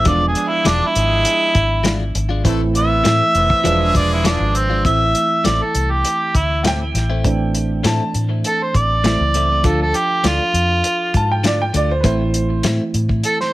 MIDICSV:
0, 0, Header, 1, 8, 480
1, 0, Start_track
1, 0, Key_signature, 0, "minor"
1, 0, Tempo, 598802
1, 48, Time_signature, 4, 2, 24, 8
1, 10846, End_track
2, 0, Start_track
2, 0, Title_t, "Upright piano"
2, 0, Program_c, 0, 0
2, 5315, Note_on_c, 0, 78, 59
2, 5341, Note_off_c, 0, 78, 0
2, 5349, Note_on_c, 0, 79, 88
2, 6269, Note_off_c, 0, 79, 0
2, 6304, Note_on_c, 0, 81, 92
2, 6648, Note_off_c, 0, 81, 0
2, 8951, Note_on_c, 0, 81, 89
2, 9056, Note_off_c, 0, 81, 0
2, 9070, Note_on_c, 0, 79, 72
2, 9171, Note_off_c, 0, 79, 0
2, 9191, Note_on_c, 0, 74, 76
2, 9295, Note_off_c, 0, 74, 0
2, 9311, Note_on_c, 0, 79, 82
2, 9412, Note_off_c, 0, 79, 0
2, 9428, Note_on_c, 0, 74, 88
2, 9534, Note_off_c, 0, 74, 0
2, 9550, Note_on_c, 0, 72, 85
2, 9623, Note_on_c, 0, 71, 63
2, 9647, Note_off_c, 0, 72, 0
2, 9652, Note_off_c, 0, 71, 0
2, 9659, Note_on_c, 0, 72, 92
2, 10121, Note_off_c, 0, 72, 0
2, 10846, End_track
3, 0, Start_track
3, 0, Title_t, "Harmonica"
3, 0, Program_c, 1, 22
3, 62, Note_on_c, 1, 74, 88
3, 211, Note_off_c, 1, 74, 0
3, 226, Note_on_c, 1, 68, 85
3, 390, Note_on_c, 1, 64, 96
3, 402, Note_off_c, 1, 68, 0
3, 548, Note_on_c, 1, 62, 95
3, 560, Note_off_c, 1, 64, 0
3, 699, Note_on_c, 1, 64, 107
3, 711, Note_off_c, 1, 62, 0
3, 1623, Note_off_c, 1, 64, 0
3, 2224, Note_on_c, 1, 76, 123
3, 3145, Note_off_c, 1, 76, 0
3, 3178, Note_on_c, 1, 74, 96
3, 3286, Note_off_c, 1, 74, 0
3, 3311, Note_on_c, 1, 64, 77
3, 3414, Note_on_c, 1, 62, 84
3, 3426, Note_off_c, 1, 64, 0
3, 3655, Note_on_c, 1, 60, 88
3, 3667, Note_off_c, 1, 62, 0
3, 3883, Note_off_c, 1, 60, 0
3, 3892, Note_on_c, 1, 76, 86
3, 4374, Note_on_c, 1, 74, 73
3, 4386, Note_off_c, 1, 76, 0
3, 4505, Note_on_c, 1, 69, 79
3, 4517, Note_off_c, 1, 74, 0
3, 4739, Note_on_c, 1, 67, 75
3, 4751, Note_off_c, 1, 69, 0
3, 5096, Note_on_c, 1, 64, 88
3, 5108, Note_off_c, 1, 67, 0
3, 5323, Note_off_c, 1, 64, 0
3, 6793, Note_on_c, 1, 69, 96
3, 6915, Note_on_c, 1, 72, 83
3, 6927, Note_off_c, 1, 69, 0
3, 7030, Note_on_c, 1, 74, 87
3, 7042, Note_off_c, 1, 72, 0
3, 7754, Note_on_c, 1, 69, 76
3, 7766, Note_off_c, 1, 74, 0
3, 7856, Note_off_c, 1, 69, 0
3, 7876, Note_on_c, 1, 69, 95
3, 7988, Note_on_c, 1, 67, 107
3, 8000, Note_off_c, 1, 69, 0
3, 8235, Note_on_c, 1, 65, 94
3, 8247, Note_off_c, 1, 67, 0
3, 9155, Note_off_c, 1, 65, 0
3, 10626, Note_on_c, 1, 69, 98
3, 10734, Note_off_c, 1, 69, 0
3, 10747, Note_on_c, 1, 72, 81
3, 10846, Note_off_c, 1, 72, 0
3, 10846, End_track
4, 0, Start_track
4, 0, Title_t, "Horn section"
4, 0, Program_c, 2, 61
4, 46, Note_on_c, 2, 62, 74
4, 48, Note_on_c, 2, 65, 63
4, 59, Note_on_c, 2, 56, 73
4, 59, Note_on_c, 2, 68, 79
4, 170, Note_off_c, 2, 62, 0
4, 171, Note_off_c, 2, 65, 0
4, 176, Note_off_c, 2, 56, 0
4, 176, Note_off_c, 2, 68, 0
4, 283, Note_on_c, 2, 62, 81
4, 287, Note_on_c, 2, 65, 71
4, 297, Note_on_c, 2, 56, 76
4, 297, Note_on_c, 2, 68, 83
4, 525, Note_off_c, 2, 62, 0
4, 527, Note_off_c, 2, 65, 0
4, 532, Note_off_c, 2, 56, 0
4, 532, Note_off_c, 2, 68, 0
4, 758, Note_on_c, 2, 62, 84
4, 763, Note_on_c, 2, 53, 74
4, 770, Note_on_c, 2, 56, 87
4, 770, Note_on_c, 2, 68, 94
4, 1242, Note_off_c, 2, 62, 0
4, 1245, Note_off_c, 2, 53, 0
4, 1248, Note_off_c, 2, 56, 0
4, 1248, Note_off_c, 2, 68, 0
4, 1964, Note_on_c, 2, 60, 82
4, 1966, Note_on_c, 2, 64, 81
4, 1975, Note_on_c, 2, 57, 89
4, 1975, Note_on_c, 2, 69, 96
4, 2088, Note_off_c, 2, 60, 0
4, 2088, Note_off_c, 2, 64, 0
4, 2093, Note_off_c, 2, 57, 0
4, 2093, Note_off_c, 2, 69, 0
4, 2200, Note_on_c, 2, 60, 78
4, 2206, Note_on_c, 2, 64, 72
4, 2213, Note_on_c, 2, 59, 80
4, 2213, Note_on_c, 2, 71, 86
4, 2442, Note_off_c, 2, 60, 0
4, 2445, Note_off_c, 2, 64, 0
4, 2449, Note_off_c, 2, 59, 0
4, 2449, Note_off_c, 2, 71, 0
4, 2673, Note_on_c, 2, 60, 83
4, 2682, Note_on_c, 2, 64, 77
4, 2684, Note_on_c, 2, 59, 77
4, 2684, Note_on_c, 2, 71, 84
4, 2915, Note_on_c, 2, 62, 105
4, 2918, Note_on_c, 2, 65, 88
4, 2919, Note_off_c, 2, 60, 0
4, 2923, Note_off_c, 2, 64, 0
4, 2924, Note_off_c, 2, 59, 0
4, 2924, Note_off_c, 2, 71, 0
4, 2925, Note_on_c, 2, 56, 107
4, 2925, Note_on_c, 2, 68, 116
4, 3689, Note_off_c, 2, 62, 0
4, 3690, Note_off_c, 2, 65, 0
4, 3694, Note_off_c, 2, 56, 0
4, 3694, Note_off_c, 2, 68, 0
4, 10846, End_track
5, 0, Start_track
5, 0, Title_t, "Clean electric guitar"
5, 0, Program_c, 3, 27
5, 41, Note_on_c, 3, 52, 77
5, 46, Note_on_c, 3, 56, 86
5, 49, Note_on_c, 3, 62, 80
5, 51, Note_on_c, 3, 65, 94
5, 191, Note_off_c, 3, 52, 0
5, 194, Note_off_c, 3, 56, 0
5, 195, Note_off_c, 3, 62, 0
5, 196, Note_off_c, 3, 65, 0
5, 519, Note_on_c, 3, 52, 81
5, 524, Note_on_c, 3, 56, 80
5, 527, Note_on_c, 3, 62, 92
5, 530, Note_on_c, 3, 65, 87
5, 669, Note_off_c, 3, 52, 0
5, 672, Note_off_c, 3, 56, 0
5, 674, Note_off_c, 3, 62, 0
5, 675, Note_off_c, 3, 65, 0
5, 1473, Note_on_c, 3, 52, 89
5, 1478, Note_on_c, 3, 56, 86
5, 1484, Note_on_c, 3, 62, 93
5, 1486, Note_on_c, 3, 65, 86
5, 1626, Note_off_c, 3, 52, 0
5, 1628, Note_off_c, 3, 56, 0
5, 1631, Note_off_c, 3, 62, 0
5, 1632, Note_off_c, 3, 65, 0
5, 1835, Note_on_c, 3, 65, 48
5, 1847, Note_on_c, 3, 62, 52
5, 1855, Note_on_c, 3, 56, 46
5, 1954, Note_on_c, 3, 45, 90
5, 1958, Note_off_c, 3, 56, 0
5, 1959, Note_off_c, 3, 65, 0
5, 1960, Note_off_c, 3, 62, 0
5, 1961, Note_on_c, 3, 57, 91
5, 1963, Note_on_c, 3, 60, 95
5, 1965, Note_on_c, 3, 64, 100
5, 2106, Note_off_c, 3, 45, 0
5, 2110, Note_off_c, 3, 57, 0
5, 2110, Note_off_c, 3, 60, 0
5, 2111, Note_off_c, 3, 64, 0
5, 2434, Note_on_c, 3, 45, 79
5, 2441, Note_on_c, 3, 57, 94
5, 2444, Note_on_c, 3, 60, 84
5, 2448, Note_on_c, 3, 64, 90
5, 2586, Note_off_c, 3, 45, 0
5, 2589, Note_off_c, 3, 57, 0
5, 2591, Note_off_c, 3, 60, 0
5, 2593, Note_off_c, 3, 64, 0
5, 2916, Note_on_c, 3, 52, 93
5, 2924, Note_on_c, 3, 56, 92
5, 2926, Note_on_c, 3, 62, 94
5, 2928, Note_on_c, 3, 65, 106
5, 3067, Note_off_c, 3, 52, 0
5, 3070, Note_off_c, 3, 56, 0
5, 3071, Note_off_c, 3, 62, 0
5, 3073, Note_off_c, 3, 65, 0
5, 3400, Note_on_c, 3, 52, 84
5, 3405, Note_on_c, 3, 56, 74
5, 3411, Note_on_c, 3, 62, 79
5, 3412, Note_on_c, 3, 65, 96
5, 3548, Note_off_c, 3, 52, 0
5, 3551, Note_off_c, 3, 56, 0
5, 3554, Note_off_c, 3, 62, 0
5, 3555, Note_off_c, 3, 65, 0
5, 3765, Note_on_c, 3, 65, 48
5, 3773, Note_on_c, 3, 62, 46
5, 3781, Note_on_c, 3, 56, 38
5, 3883, Note_off_c, 3, 56, 0
5, 3883, Note_off_c, 3, 65, 0
5, 3884, Note_on_c, 3, 45, 71
5, 3886, Note_on_c, 3, 57, 75
5, 3887, Note_off_c, 3, 62, 0
5, 3891, Note_on_c, 3, 60, 76
5, 3894, Note_on_c, 3, 64, 80
5, 4030, Note_off_c, 3, 45, 0
5, 4032, Note_off_c, 3, 57, 0
5, 4034, Note_off_c, 3, 60, 0
5, 4036, Note_off_c, 3, 64, 0
5, 4362, Note_on_c, 3, 45, 76
5, 4366, Note_on_c, 3, 57, 78
5, 4372, Note_on_c, 3, 60, 74
5, 4377, Note_on_c, 3, 64, 81
5, 4510, Note_off_c, 3, 45, 0
5, 4512, Note_off_c, 3, 57, 0
5, 4514, Note_off_c, 3, 60, 0
5, 4517, Note_off_c, 3, 64, 0
5, 5323, Note_on_c, 3, 45, 74
5, 5327, Note_on_c, 3, 57, 66
5, 5329, Note_on_c, 3, 60, 77
5, 5332, Note_on_c, 3, 64, 77
5, 5470, Note_off_c, 3, 45, 0
5, 5472, Note_off_c, 3, 57, 0
5, 5474, Note_off_c, 3, 60, 0
5, 5475, Note_off_c, 3, 64, 0
5, 5688, Note_on_c, 3, 64, 50
5, 5695, Note_on_c, 3, 60, 46
5, 5703, Note_on_c, 3, 57, 39
5, 5830, Note_off_c, 3, 64, 0
5, 5833, Note_off_c, 3, 60, 0
5, 5837, Note_off_c, 3, 57, 0
5, 6280, Note_on_c, 3, 45, 81
5, 6285, Note_on_c, 3, 57, 83
5, 6290, Note_on_c, 3, 60, 84
5, 6295, Note_on_c, 3, 64, 80
5, 6429, Note_off_c, 3, 45, 0
5, 6432, Note_off_c, 3, 57, 0
5, 6434, Note_off_c, 3, 60, 0
5, 6437, Note_off_c, 3, 64, 0
5, 7246, Note_on_c, 3, 45, 76
5, 7248, Note_on_c, 3, 57, 76
5, 7254, Note_on_c, 3, 60, 80
5, 7256, Note_on_c, 3, 64, 83
5, 7393, Note_off_c, 3, 45, 0
5, 7394, Note_off_c, 3, 57, 0
5, 7397, Note_off_c, 3, 60, 0
5, 7398, Note_off_c, 3, 64, 0
5, 7487, Note_on_c, 3, 45, 52
5, 7497, Note_on_c, 3, 57, 60
5, 7499, Note_on_c, 3, 60, 68
5, 7507, Note_on_c, 3, 64, 66
5, 7601, Note_off_c, 3, 64, 0
5, 7610, Note_off_c, 3, 45, 0
5, 7611, Note_off_c, 3, 60, 0
5, 7611, Note_on_c, 3, 64, 39
5, 7615, Note_off_c, 3, 57, 0
5, 7621, Note_on_c, 3, 60, 39
5, 7628, Note_on_c, 3, 57, 36
5, 7723, Note_off_c, 3, 57, 0
5, 7726, Note_on_c, 3, 50, 73
5, 7728, Note_off_c, 3, 64, 0
5, 7730, Note_off_c, 3, 60, 0
5, 7733, Note_on_c, 3, 57, 78
5, 7733, Note_on_c, 3, 62, 78
5, 7738, Note_on_c, 3, 65, 82
5, 7873, Note_off_c, 3, 50, 0
5, 7877, Note_off_c, 3, 57, 0
5, 7877, Note_off_c, 3, 62, 0
5, 7880, Note_off_c, 3, 65, 0
5, 8206, Note_on_c, 3, 50, 73
5, 8211, Note_on_c, 3, 57, 75
5, 8214, Note_on_c, 3, 62, 85
5, 8219, Note_on_c, 3, 65, 77
5, 8353, Note_off_c, 3, 50, 0
5, 8356, Note_off_c, 3, 57, 0
5, 8358, Note_off_c, 3, 62, 0
5, 8360, Note_off_c, 3, 65, 0
5, 9168, Note_on_c, 3, 50, 80
5, 9176, Note_on_c, 3, 57, 77
5, 9179, Note_on_c, 3, 62, 82
5, 9182, Note_on_c, 3, 65, 82
5, 9315, Note_off_c, 3, 50, 0
5, 9319, Note_off_c, 3, 57, 0
5, 9321, Note_off_c, 3, 62, 0
5, 9323, Note_off_c, 3, 65, 0
5, 9403, Note_on_c, 3, 50, 59
5, 9410, Note_on_c, 3, 57, 65
5, 9417, Note_on_c, 3, 62, 60
5, 9421, Note_on_c, 3, 65, 60
5, 9553, Note_off_c, 3, 50, 0
5, 9557, Note_off_c, 3, 57, 0
5, 9560, Note_off_c, 3, 62, 0
5, 9562, Note_off_c, 3, 65, 0
5, 9649, Note_on_c, 3, 45, 86
5, 9656, Note_on_c, 3, 57, 94
5, 9658, Note_on_c, 3, 60, 79
5, 9660, Note_on_c, 3, 64, 96
5, 9796, Note_off_c, 3, 45, 0
5, 9800, Note_off_c, 3, 57, 0
5, 9801, Note_off_c, 3, 60, 0
5, 9802, Note_off_c, 3, 64, 0
5, 10131, Note_on_c, 3, 45, 88
5, 10134, Note_on_c, 3, 57, 88
5, 10139, Note_on_c, 3, 60, 91
5, 10143, Note_on_c, 3, 64, 97
5, 10278, Note_off_c, 3, 45, 0
5, 10279, Note_off_c, 3, 57, 0
5, 10282, Note_off_c, 3, 60, 0
5, 10284, Note_off_c, 3, 64, 0
5, 10846, End_track
6, 0, Start_track
6, 0, Title_t, "Tine electric piano"
6, 0, Program_c, 4, 4
6, 33, Note_on_c, 4, 53, 60
6, 43, Note_on_c, 4, 56, 59
6, 46, Note_on_c, 4, 59, 57
6, 55, Note_on_c, 4, 62, 74
6, 1926, Note_off_c, 4, 53, 0
6, 1931, Note_off_c, 4, 56, 0
6, 1932, Note_off_c, 4, 59, 0
6, 1937, Note_off_c, 4, 62, 0
6, 1957, Note_on_c, 4, 52, 82
6, 1962, Note_on_c, 4, 57, 70
6, 1968, Note_on_c, 4, 60, 71
6, 1971, Note_on_c, 4, 64, 86
6, 2901, Note_off_c, 4, 52, 0
6, 2904, Note_off_c, 4, 57, 0
6, 2907, Note_off_c, 4, 60, 0
6, 2908, Note_off_c, 4, 64, 0
6, 2917, Note_on_c, 4, 53, 88
6, 2924, Note_on_c, 4, 56, 76
6, 2930, Note_on_c, 4, 71, 73
6, 2935, Note_on_c, 4, 62, 93
6, 3861, Note_off_c, 4, 53, 0
6, 3865, Note_off_c, 4, 56, 0
6, 3868, Note_off_c, 4, 71, 0
6, 3870, Note_off_c, 4, 62, 0
6, 3880, Note_on_c, 4, 52, 62
6, 3885, Note_on_c, 4, 57, 54
6, 3892, Note_on_c, 4, 60, 57
6, 3897, Note_on_c, 4, 64, 69
6, 5771, Note_off_c, 4, 52, 0
6, 5774, Note_off_c, 4, 57, 0
6, 5777, Note_off_c, 4, 60, 0
6, 5779, Note_off_c, 4, 64, 0
6, 5801, Note_on_c, 4, 52, 70
6, 5806, Note_on_c, 4, 57, 67
6, 5813, Note_on_c, 4, 60, 70
6, 5816, Note_on_c, 4, 62, 78
6, 7216, Note_off_c, 4, 52, 0
6, 7218, Note_off_c, 4, 57, 0
6, 7222, Note_off_c, 4, 60, 0
6, 7224, Note_off_c, 4, 62, 0
6, 7239, Note_on_c, 4, 52, 48
6, 7243, Note_on_c, 4, 57, 46
6, 7249, Note_on_c, 4, 60, 41
6, 7251, Note_on_c, 4, 64, 47
6, 7719, Note_on_c, 4, 53, 65
6, 7724, Note_off_c, 4, 52, 0
6, 7725, Note_on_c, 4, 69, 57
6, 7726, Note_off_c, 4, 57, 0
6, 7728, Note_off_c, 4, 60, 0
6, 7729, Note_off_c, 4, 64, 0
6, 7734, Note_on_c, 4, 62, 56
6, 7738, Note_on_c, 4, 65, 64
6, 9614, Note_off_c, 4, 53, 0
6, 9617, Note_off_c, 4, 69, 0
6, 9622, Note_off_c, 4, 62, 0
6, 9623, Note_off_c, 4, 65, 0
6, 9642, Note_on_c, 4, 52, 71
6, 9648, Note_on_c, 4, 57, 69
6, 9654, Note_on_c, 4, 60, 69
6, 9658, Note_on_c, 4, 64, 81
6, 10824, Note_off_c, 4, 52, 0
6, 10827, Note_off_c, 4, 57, 0
6, 10830, Note_off_c, 4, 60, 0
6, 10832, Note_off_c, 4, 64, 0
6, 10846, End_track
7, 0, Start_track
7, 0, Title_t, "Fingered electric bass"
7, 0, Program_c, 5, 33
7, 44, Note_on_c, 5, 28, 95
7, 266, Note_off_c, 5, 28, 0
7, 527, Note_on_c, 5, 28, 91
7, 640, Note_off_c, 5, 28, 0
7, 766, Note_on_c, 5, 32, 94
7, 987, Note_off_c, 5, 32, 0
7, 1242, Note_on_c, 5, 32, 77
7, 1692, Note_off_c, 5, 32, 0
7, 1723, Note_on_c, 5, 32, 89
7, 1944, Note_off_c, 5, 32, 0
7, 1963, Note_on_c, 5, 33, 102
7, 2412, Note_off_c, 5, 33, 0
7, 2447, Note_on_c, 5, 45, 89
7, 2559, Note_off_c, 5, 45, 0
7, 2683, Note_on_c, 5, 29, 94
7, 2797, Note_off_c, 5, 29, 0
7, 2926, Note_on_c, 5, 28, 106
7, 3146, Note_off_c, 5, 28, 0
7, 3167, Note_on_c, 5, 28, 83
7, 3499, Note_off_c, 5, 28, 0
7, 3530, Note_on_c, 5, 32, 93
7, 3857, Note_off_c, 5, 32, 0
7, 3889, Note_on_c, 5, 33, 87
7, 4107, Note_off_c, 5, 33, 0
7, 4371, Note_on_c, 5, 33, 78
7, 4481, Note_off_c, 5, 33, 0
7, 4607, Note_on_c, 5, 36, 81
7, 4827, Note_off_c, 5, 36, 0
7, 5088, Note_on_c, 5, 38, 75
7, 5534, Note_off_c, 5, 38, 0
7, 5566, Note_on_c, 5, 33, 84
7, 6254, Note_off_c, 5, 33, 0
7, 6286, Note_on_c, 5, 45, 85
7, 6399, Note_off_c, 5, 45, 0
7, 6529, Note_on_c, 5, 45, 79
7, 6748, Note_off_c, 5, 45, 0
7, 7009, Note_on_c, 5, 33, 79
7, 7342, Note_off_c, 5, 33, 0
7, 7377, Note_on_c, 5, 37, 86
7, 7702, Note_off_c, 5, 37, 0
7, 7730, Note_on_c, 5, 38, 84
7, 7949, Note_off_c, 5, 38, 0
7, 8207, Note_on_c, 5, 38, 78
7, 8321, Note_off_c, 5, 38, 0
7, 8446, Note_on_c, 5, 41, 87
7, 8668, Note_off_c, 5, 41, 0
7, 8932, Note_on_c, 5, 44, 81
7, 9380, Note_off_c, 5, 44, 0
7, 9412, Note_on_c, 5, 38, 88
7, 9632, Note_off_c, 5, 38, 0
7, 9650, Note_on_c, 5, 33, 89
7, 10099, Note_off_c, 5, 33, 0
7, 10133, Note_on_c, 5, 45, 81
7, 10245, Note_off_c, 5, 45, 0
7, 10373, Note_on_c, 5, 45, 90
7, 10593, Note_off_c, 5, 45, 0
7, 10846, End_track
8, 0, Start_track
8, 0, Title_t, "Drums"
8, 41, Note_on_c, 9, 42, 81
8, 44, Note_on_c, 9, 36, 110
8, 121, Note_off_c, 9, 42, 0
8, 125, Note_off_c, 9, 36, 0
8, 282, Note_on_c, 9, 42, 62
8, 362, Note_off_c, 9, 42, 0
8, 523, Note_on_c, 9, 42, 87
8, 534, Note_on_c, 9, 38, 111
8, 603, Note_off_c, 9, 42, 0
8, 614, Note_off_c, 9, 38, 0
8, 765, Note_on_c, 9, 42, 65
8, 845, Note_off_c, 9, 42, 0
8, 1001, Note_on_c, 9, 42, 87
8, 1081, Note_off_c, 9, 42, 0
8, 1241, Note_on_c, 9, 42, 72
8, 1242, Note_on_c, 9, 36, 92
8, 1321, Note_off_c, 9, 42, 0
8, 1322, Note_off_c, 9, 36, 0
8, 1478, Note_on_c, 9, 42, 88
8, 1490, Note_on_c, 9, 38, 105
8, 1559, Note_off_c, 9, 42, 0
8, 1570, Note_off_c, 9, 38, 0
8, 1723, Note_on_c, 9, 42, 73
8, 1804, Note_off_c, 9, 42, 0
8, 1962, Note_on_c, 9, 36, 106
8, 1963, Note_on_c, 9, 42, 85
8, 2043, Note_off_c, 9, 36, 0
8, 2043, Note_off_c, 9, 42, 0
8, 2205, Note_on_c, 9, 42, 64
8, 2285, Note_off_c, 9, 42, 0
8, 2444, Note_on_c, 9, 42, 93
8, 2455, Note_on_c, 9, 38, 110
8, 2524, Note_off_c, 9, 42, 0
8, 2535, Note_off_c, 9, 38, 0
8, 2683, Note_on_c, 9, 42, 60
8, 2763, Note_off_c, 9, 42, 0
8, 2806, Note_on_c, 9, 36, 77
8, 2886, Note_off_c, 9, 36, 0
8, 2925, Note_on_c, 9, 42, 77
8, 3005, Note_off_c, 9, 42, 0
8, 3165, Note_on_c, 9, 36, 92
8, 3165, Note_on_c, 9, 42, 64
8, 3245, Note_off_c, 9, 36, 0
8, 3245, Note_off_c, 9, 42, 0
8, 3405, Note_on_c, 9, 42, 85
8, 3417, Note_on_c, 9, 38, 122
8, 3486, Note_off_c, 9, 42, 0
8, 3497, Note_off_c, 9, 38, 0
8, 3646, Note_on_c, 9, 42, 63
8, 3726, Note_off_c, 9, 42, 0
8, 3886, Note_on_c, 9, 36, 101
8, 3887, Note_on_c, 9, 42, 75
8, 3966, Note_off_c, 9, 36, 0
8, 3967, Note_off_c, 9, 42, 0
8, 4127, Note_on_c, 9, 42, 60
8, 4207, Note_off_c, 9, 42, 0
8, 4366, Note_on_c, 9, 42, 85
8, 4377, Note_on_c, 9, 38, 105
8, 4446, Note_off_c, 9, 42, 0
8, 4458, Note_off_c, 9, 38, 0
8, 4606, Note_on_c, 9, 42, 64
8, 4686, Note_off_c, 9, 42, 0
8, 4846, Note_on_c, 9, 42, 82
8, 4926, Note_off_c, 9, 42, 0
8, 5087, Note_on_c, 9, 36, 83
8, 5088, Note_on_c, 9, 42, 65
8, 5167, Note_off_c, 9, 36, 0
8, 5168, Note_off_c, 9, 42, 0
8, 5327, Note_on_c, 9, 42, 86
8, 5338, Note_on_c, 9, 38, 103
8, 5407, Note_off_c, 9, 42, 0
8, 5418, Note_off_c, 9, 38, 0
8, 5571, Note_on_c, 9, 42, 65
8, 5582, Note_on_c, 9, 38, 34
8, 5651, Note_off_c, 9, 42, 0
8, 5662, Note_off_c, 9, 38, 0
8, 5807, Note_on_c, 9, 42, 76
8, 5808, Note_on_c, 9, 36, 105
8, 5887, Note_off_c, 9, 42, 0
8, 5888, Note_off_c, 9, 36, 0
8, 6048, Note_on_c, 9, 42, 59
8, 6128, Note_off_c, 9, 42, 0
8, 6288, Note_on_c, 9, 42, 87
8, 6299, Note_on_c, 9, 38, 109
8, 6368, Note_off_c, 9, 42, 0
8, 6379, Note_off_c, 9, 38, 0
8, 6529, Note_on_c, 9, 42, 57
8, 6609, Note_off_c, 9, 42, 0
8, 6768, Note_on_c, 9, 42, 76
8, 6849, Note_off_c, 9, 42, 0
8, 7010, Note_on_c, 9, 36, 81
8, 7011, Note_on_c, 9, 42, 59
8, 7090, Note_off_c, 9, 36, 0
8, 7091, Note_off_c, 9, 42, 0
8, 7250, Note_on_c, 9, 42, 76
8, 7261, Note_on_c, 9, 38, 115
8, 7330, Note_off_c, 9, 42, 0
8, 7341, Note_off_c, 9, 38, 0
8, 7488, Note_on_c, 9, 42, 63
8, 7568, Note_off_c, 9, 42, 0
8, 7726, Note_on_c, 9, 42, 82
8, 7729, Note_on_c, 9, 36, 107
8, 7806, Note_off_c, 9, 42, 0
8, 7809, Note_off_c, 9, 36, 0
8, 7969, Note_on_c, 9, 42, 60
8, 8049, Note_off_c, 9, 42, 0
8, 8208, Note_on_c, 9, 42, 85
8, 8219, Note_on_c, 9, 38, 109
8, 8288, Note_off_c, 9, 42, 0
8, 8299, Note_off_c, 9, 38, 0
8, 8453, Note_on_c, 9, 42, 61
8, 8533, Note_off_c, 9, 42, 0
8, 8690, Note_on_c, 9, 42, 82
8, 8770, Note_off_c, 9, 42, 0
8, 8930, Note_on_c, 9, 42, 66
8, 8931, Note_on_c, 9, 36, 79
8, 9011, Note_off_c, 9, 42, 0
8, 9012, Note_off_c, 9, 36, 0
8, 9171, Note_on_c, 9, 42, 90
8, 9182, Note_on_c, 9, 38, 107
8, 9251, Note_off_c, 9, 42, 0
8, 9262, Note_off_c, 9, 38, 0
8, 9411, Note_on_c, 9, 42, 66
8, 9491, Note_off_c, 9, 42, 0
8, 9650, Note_on_c, 9, 42, 82
8, 9651, Note_on_c, 9, 36, 113
8, 9730, Note_off_c, 9, 42, 0
8, 9731, Note_off_c, 9, 36, 0
8, 9891, Note_on_c, 9, 42, 62
8, 9971, Note_off_c, 9, 42, 0
8, 10127, Note_on_c, 9, 42, 85
8, 10138, Note_on_c, 9, 38, 109
8, 10207, Note_off_c, 9, 42, 0
8, 10219, Note_off_c, 9, 38, 0
8, 10374, Note_on_c, 9, 42, 57
8, 10454, Note_off_c, 9, 42, 0
8, 10496, Note_on_c, 9, 36, 73
8, 10576, Note_off_c, 9, 36, 0
8, 10609, Note_on_c, 9, 42, 79
8, 10690, Note_off_c, 9, 42, 0
8, 10745, Note_on_c, 9, 38, 36
8, 10825, Note_off_c, 9, 38, 0
8, 10846, End_track
0, 0, End_of_file